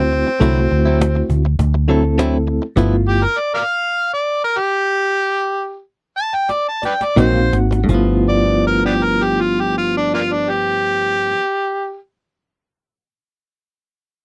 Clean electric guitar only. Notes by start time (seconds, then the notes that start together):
0.12 muted clean electric guitar stroke
0.27 muted clean electric guitar stroke
0.41 D3 F#3 C4 E4
0.71 muted clean electric guitar stroke
0.85 F#3 C4 E4
1.00 muted clean electric guitar stroke
1.15 muted clean electric guitar stroke
1.45 muted clean electric guitar stroke
1.74 muted clean electric guitar stroke
1.88 D3 F#3 C4 E4
2.04 muted clean electric guitar stroke
2.18 D3 F#3 C4 E4
2.47 muted clean electric guitar stroke
2.62 muted clean electric guitar stroke
2.76 G2 F3 B3 E4
7.16 G#2 F#3 A#3 C4
7.52 muted clean electric guitar stroke
7.71 muted clean electric guitar stroke
7.84 G2
7.89 F3
7.94 B3